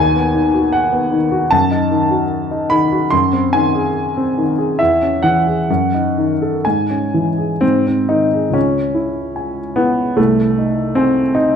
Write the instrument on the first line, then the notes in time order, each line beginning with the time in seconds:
grand piano
Already playing: D#2 G#5
0.16 B3
0.35 D#3
0.54 F#4
0.72 F#5
0.92 B3
1.11 D#3
1.31 F#4
1.51 F#2 A5
1.71 D#4
1.91 D#3
2.11 F#4
2.51 D#4
2.70 D#3 B5
2.92 F#4
3.11 F#2 C6
3.32 C4
3.53 D#3 G#5
3.75 G#4
4.17 C4
4.38 D#3
4.58 G#4
4.79 E2 E5
5.02 C#4
5.23 E3 F#5
5.47 G#4
5.70 F#2
5.94 D#4
6.18 D#3
6.42 A4
6.65 G#2 G#5
6.90 C#4
7.14 E3
7.38 G#4
7.61 G#2 C4
7.87 C4
8.09 D#3 D#4
8.33 G#4
8.50 C#2 C#4
8.95 E4
9.36 G#5
9.76 B3 E4
10.17 C2 A3
10.58 D#4
10.95 C4 G#5
11.35 D#4